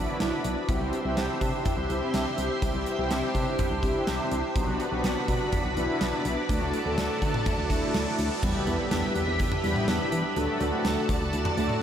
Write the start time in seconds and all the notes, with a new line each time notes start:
Already playing: B3 C4 D4 E4 F#4 B4 D5 B5
0.20 B1 D4, snare, closed hi-hat
0.32 D4
0.44 B1, closed hi-hat
0.57 B3
0.69 C2 C4 E4 G4 C5 E5 C6, kick, closed hi-hat
0.81 C2
0.93 B3, closed hi-hat
1.05 C2 C4 E4 G4
1.17 C2 D4, snare, closed hi-hat
1.41 C3 D4, kick, closed hi-hat
1.65 E4, kick, closed hi-hat, mid tom
1.78 C2 D4
1.90 C2 C4 E4 G4, closed hi-hat
2.14 C2 D4, snare, closed hi-hat
2.26 D4
2.38 C2, closed hi-hat
2.50 C4
2.62 C2 C4 E4 G4, kick, closed hi-hat
2.74 C2
2.86 B3, closed hi-hat
2.98 C2 C4 E4 G4
3.11 C2 D4, snare, closed hi-hat
3.35 C3 D4, kick, closed hi-hat
3.59 E4, kick, closed hi-hat, mid tom
3.71 C2 D4
3.83 C2 C4 E4 G4, kick, closed hi-hat
4.07 C2 D4, snare, closed hi-hat
4.19 D4
4.31 C2, closed hi-hat
4.44 C4
4.56 B1 B3 D4 F#4 B4 D5 B5, kick, closed hi-hat, riser
4.68 B1
4.80 B3, closed hi-hat
4.92 B1 B3 C4 D4 F#4
5.04 B1 D4, snare, closed hi-hat
5.28 B2 D4, kick, closed hi-hat
5.52 E4, kick, closed hi-hat, mid tom
5.65 B1 D4
5.77 B1 B3 D4 E4, closed hi-hat
6.01 B1 D4, snare, closed hi-hat
6.13 D4
6.25 B1, closed hi-hat
6.37 B3
6.49 D2 A3 D4 F#4 A4 A5, kick, closed hi-hat
6.61 D2
6.73 B3, closed hi-hat
6.86 D2 A3 C4 D4 A4
6.98 D2 D4, snare, closed hi-hat
7.22 D3 D4, kick, closed hi-hat
7.34 mid tom
7.46 E4, kick, closed hi-hat, mid tom
7.58 D2 D4
7.70 D2 A3 D4 E4, kick, closed hi-hat
7.94 D2 D4, snare, closed hi-hat
8.07 D4
8.19 D2, closed hi-hat
8.31 B3
8.43 E2 G3 B3 E4 G4 B4 E5 B5, kick, crash, impact
8.67 E2 B3, closed hi-hat, cowbell
8.79 C4
8.91 E2 D4, snare, closed hi-hat
9.15 E2 D4, closed hi-hat
9.28 E2
9.39 E2 E4, kick, closed hi-hat
9.52 D4, mid tom
9.64 E2 G3 B3 E4 G4, closed hi-hat
9.76 mid tom
9.88 E2 D4, snare, closed hi-hat
10.00 D4
10.12 E3, closed hi-hat
10.24 B3
10.36 D2 A3 D4 F#4 A4 D5 A5, closed hi-hat
10.60 D2 B3, closed hi-hat, cowbell
10.73 C4
10.85 D2 D4, snare, closed hi-hat
11.09 D2 D4, kick, closed hi-hat
11.21 D2
11.33 D2 E4, closed hi-hat
11.45 D4, mid tom
11.57 D2 A3 D4 E4 F#4 A4, closed hi-hat
11.69 mid tom